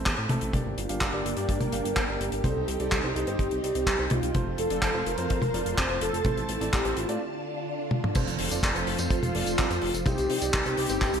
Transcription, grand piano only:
Already playing: A3 C4 E4 C5
0.30 A3 C4 E4 A4
0.54 A#3 D4 G4 D5
0.89 A#3 D4 G4 F5
1.13 A#3 D4 G4 D5
1.37 A#3 D4 G4 D5
1.73 A#3 D4 G4 F5
2.08 A#3 D4 G4 D5
2.44 G3 C4 D#4 C5
2.80 G3 C4 D#4 D5
3.04 G3 C4 D#4 C5
3.27 G3 C4 D#4 C5
3.63 G3 C4 D#4 D5
3.99 G3 C4 D#4 C5
4.35 A3 C4 F4 C5
4.70 A3 C4 F4 D5
4.94 A3 C4 F4 C5
5.18 A3 C4 F4 C5
5.54 A3 C4 F4 D5
5.89 A3 C4 F4 C5
6.25 A3 C4 E4 C5
6.61 A3 C4 E4 D5
6.85 A3 C4 E4 C5
7.08 A3 D4 F4 D5
8.16 A3 C4 F4 C5
8.51 A3 C4 F4 D5
8.75 A3 C4 F4 C5
8.99 A3 C4 F4 C5
9.35 A3 C4 F4 D5
9.70 A3 C4 F4 C5
10.06 G3 C4 D#4 C5
10.42 G3 C4 D#4 D5
10.66 G3 C4 D#4 C5
10.89 G3 C4 D#4 C5

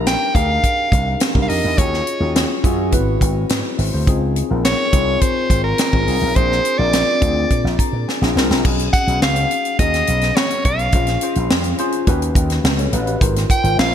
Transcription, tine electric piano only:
Already playing: D4 D#4 G4 A#4
0.34 D4 D#4 G4 G#4
0.42 A#4
1.34 D4 D#4 G4 A#4
1.48 D4 D#4 G4 A#4
1.78 C#4 F4 F#4 G#4
2.20 C#4 F4 F#4 G#4
2.64 C#4 F4 F#4 G#4
2.92 B3 E4 F#4 B4
2.98 C4
3.51 G#4 B4
3.78 C5 E5
3.93 G#4 C5
4.07 C4 D#4 F4 G#4
4.50 C4 D#4 F4 A#4
4.92 C4 D#4 F4 G#4
5.92 C4 D#4 F4 G#4
6.07 C4 D#4 F4 G#4
6.35 C4 D4 F4 G#4
6.79 C4 D4 F4 A#4
7.20 C4 D4 F4 G#4
7.79 A#5
8.08 G#5
8.21 C4 D4 F4 G#4
8.37 C4 D4 F4 A#4 F5
8.65 C#4 D#4 F#4 G#4
9.07 C#4 D#4 F#4 G#4
9.79 C#4 D#4 F#4 G#4
10.94 C#4 F4 G#4 C5
11.22 C#4 F4 G#4 C5
11.79 C#4 F4 G#4 C5
12.07 C#4 F#4 G4 B4
12.79 A4 C#5
12.93 B4 D#5
13.06 G4 B4
13.21 D#4 F4 A#4 C5
13.63 D#4 F4 A#4 C5

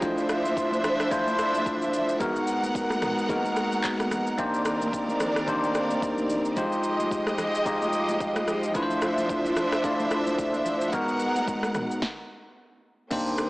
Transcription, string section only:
Already playing: F3
0.02 D4 C5 E5
2.21 G#3 B3 A#4 F#5
4.38 D#3 C4 A#4 D5
6.57 F3 G#3 G4 D#5
8.75 D4 C5 E5
10.93 G#3 B3 A#4 F#5
13.11 D#3 A#3 C4

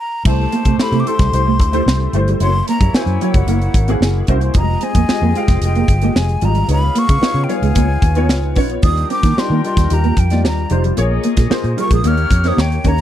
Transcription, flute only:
0.00 A#5
0.26 A5
0.81 B5
1.00 D6
1.08 C6
2.42 C6
2.69 A#5
2.95 G#5
3.23 F#5
4.58 A#5
4.84 G#5
5.37 G5
5.64 G5
6.18 G#5
6.45 A#5
6.72 B5
6.99 C#6
7.44 G5
7.51 G#5
8.84 D#6
9.11 D6
9.39 C6
9.66 C6
9.94 A#5
10.19 G5
10.47 A#5
11.81 C#6
11.94 D#6
12.07 F6
12.48 D#6
12.60 G5
12.88 A#5

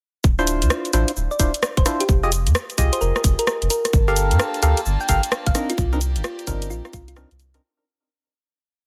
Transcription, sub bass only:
0.24 D1
0.62 D2
0.93 A1
1.16 D1
1.40 D1
1.77 D1
2.09 F1
2.46 F2
2.78 C2
3.01 F1
3.24 F1
3.62 F1
3.93 G1
4.31 G2
4.63 D2
4.86 G1
5.09 G1
5.47 G1
5.78 C2
6.16 G1
6.47 G1
6.70 A#1
6.93 C2
7.31 C2

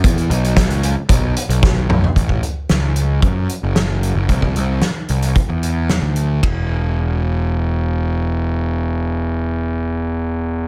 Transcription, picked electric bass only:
0.04 E2
0.30 B1
0.70 C#2
1.10 B1
1.49 B1
1.89 B1
2.16 A1
2.71 C#2
3.22 F#2
3.63 F#1
4.15 F#1
4.29 C2
4.56 C2
5.10 C2
5.49 E2
6.02 D2
6.43 E1

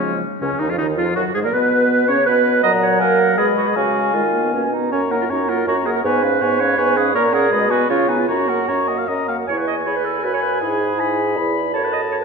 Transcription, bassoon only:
Already playing: C#3
0.41 C#2
0.60 D#2
0.69 F2
0.79 D#2
0.98 F2
1.16 F#2
1.35 G#2
1.45 A#2
1.54 B2
2.10 C#3
2.28 B2
2.64 A#2
3.01 A#3
3.38 B2
3.76 C#3
4.14 D#3
4.53 B2
4.92 F#2
5.30 F#2
5.67 F#2
6.04 G#2
6.42 G#2
6.78 G#2
7.15 A#2
7.52 B2
7.90 C#3
8.29 F#2
8.69 F#2
9.09 F#2
9.49 E2
10.24 F#2
10.62 G#2
11.37 E2
11.75 F#2

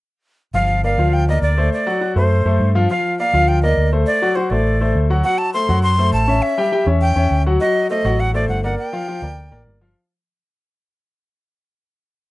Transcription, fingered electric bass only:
0.54 G1
0.98 D2
1.42 D2
2.16 F#2
2.45 F#2
2.60 G2
3.33 D2
3.77 D2
4.51 A1
4.95 D2
5.69 F#2
6.13 A1
6.86 E2
7.16 E2
7.31 D2
8.05 A1
8.49 G1
9.22 D2
9.52 A1
9.67 G1

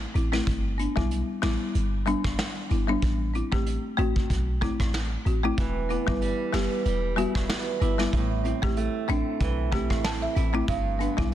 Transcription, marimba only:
0.14 C4 E4
0.32 A3 C4 E4
0.78 B3 D4
0.96 G3 B3 E4
1.42 G3 B3 E4
2.06 G3 B3 D4
2.70 B3 E4
2.88 G3 B3 D4
3.34 C4 E4
3.52 A3 C4 G4
3.97 A3 C4 F#4
4.61 A3 C4 E4
5.25 C4 F#4
5.43 A3 C4 E4
5.89 B3 E4
6.07 G3 B3 E4
6.53 G3 B3 G4
7.16 G3 B3 F#4
7.80 B3 E4
7.98 G3 B3 E4
8.44 C4 E4
8.62 A3 C4 G4
9.08 A3 C4 D4
9.72 A3 C4 G4
10.04 A5
10.22 E5
10.36 C4 E4
10.53 A3 C4 E4
10.99 B3 D4
11.17 G3 B3 E4

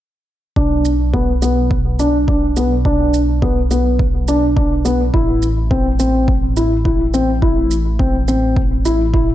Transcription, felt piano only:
0.56 D4
1.14 B3
1.42 B3
1.99 D4
2.28 D4
2.57 B3
2.85 D4
3.42 B3
3.71 B3
4.28 D4
4.56 D4
4.85 B3
5.14 E4
5.71 C4
5.99 C4
6.57 E4
6.85 E4
7.14 C4
7.42 E4
7.99 C4
8.28 C4
8.85 E4
9.14 E4

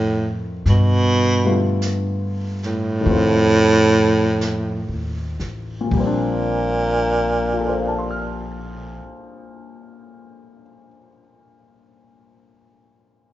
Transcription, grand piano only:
Already playing: D#3 F3 A3 C4 F4
1.44 D3 G3 A3 B3 F4
3.01 D#3 F3
3.07 A3 C4
3.13 F4
5.81 A#2
5.87 F3
5.93 G3
6.00 C4
6.06 D4
7.53 F4
7.61 A4
7.68 C5
7.78 F5
7.88 A5
7.99 C6
8.11 F6

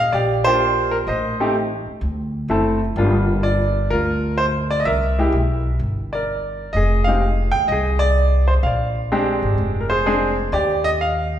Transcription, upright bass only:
0.13 A#1
1.07 A1
1.86 muted upright bass stroke
2.01 D2
2.48 F#1
2.96 G1
3.91 D2
4.85 C2
5.32 B1
5.79 G1
6.74 F1
7.53 D#2
7.69 C2
8.63 A#1
9.42 G#1
9.58 F1
10.52 D#2

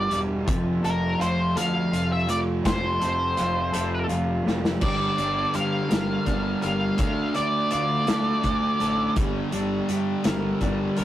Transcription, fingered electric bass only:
0.11 E1
0.48 F1
0.83 F1
1.19 F1
1.56 D2
1.93 F1
2.66 F1
3.02 F1
3.39 F1
3.75 F1
4.10 F1
4.46 F1
4.82 G1
5.18 G1
5.55 G2
5.91 G1
6.28 G1
6.64 G1
6.99 D2
7.38 D2
7.73 D2
8.09 D2
8.44 D2
8.81 A1
9.16 G1
9.54 G1
9.89 G2
10.26 G1
10.62 G1
10.99 C2

